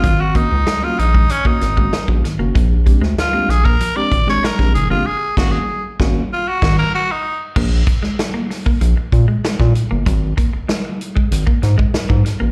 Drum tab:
CC |----------------|----------------|--x-------x-----|x---------------|
HH |x-x-x-x-x-x-x-x-|x-x-x-x-x-x-x-x-|----------------|--x-x-o-x-x-x-x-|
SD |----o-----o-o-o-|---oo-o----ooo--|--o---o---o-----|---oo-o-----oo--|
BD |o-o----o-o-o-o--|o-o----o--o--o--|--o---o---o-----|o-o----o--o--o--|

CC |----------------|
HH |x-x-x-x-x-x-x-x-|
SD |----o-----o-o-o-|
BD |o-o----o-o-o-o--|